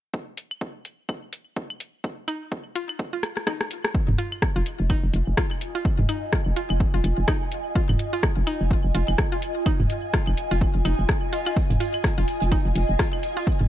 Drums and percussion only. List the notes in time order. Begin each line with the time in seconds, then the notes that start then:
0.14 kick
0.37 closed hi-hat
0.51 claves
0.61 kick
0.85 closed hi-hat
1.09 kick, claves
1.33 closed hi-hat
1.56 kick
1.70 claves
1.80 closed hi-hat
2.04 kick
2.28 closed hi-hat, claves
2.52 kick
2.75 closed hi-hat
2.89 claves
2.99 kick
3.23 cross-stick, closed hi-hat
3.37 cross-stick
3.47 kick, cross-stick, claves
3.61 cross-stick
3.71 closed hi-hat
3.85 cross-stick
3.95 kick
4.08 mid tom
4.18 closed hi-hat
4.32 claves
4.42 kick, cross-stick
4.66 closed hi-hat
4.90 kick, claves
5.14 closed hi-hat
5.37 kick, cross-stick
5.51 claves
5.61 closed hi-hat
5.85 kick
5.99 mid tom
6.09 closed hi-hat, claves
6.33 kick, cross-stick
6.56 closed hi-hat
6.70 claves
6.80 kick
7.04 closed hi-hat
7.28 kick, cross-stick, claves
7.52 closed hi-hat
7.75 kick
7.89 mid tom, claves
7.99 closed hi-hat
8.23 kick, cross-stick
8.47 closed hi-hat, claves
8.71 kick
8.95 closed hi-hat
9.08 claves
9.18 kick, cross-stick
9.42 closed hi-hat
9.66 kick, claves
9.80 mid tom
9.90 closed hi-hat
10.14 kick, cross-stick
10.27 claves
10.37 closed hi-hat
10.61 kick
10.85 closed hi-hat, claves
11.09 kick, cross-stick
11.33 closed hi-hat
11.46 claves
11.56 kick, tambourine
11.70 closed hi-hat, mid tom
11.80 closed hi-hat, tambourine
11.94 claves
12.04 kick, cross-stick, snare, tambourine
12.28 closed hi-hat, tambourine
12.42 closed hi-hat
12.52 kick, tambourine, claves
12.75 closed hi-hat, tambourine
12.99 kick, cross-stick, snare, tambourine
13.13 claves
13.23 closed hi-hat, tambourine
13.47 kick, tambourine
13.61 mid tom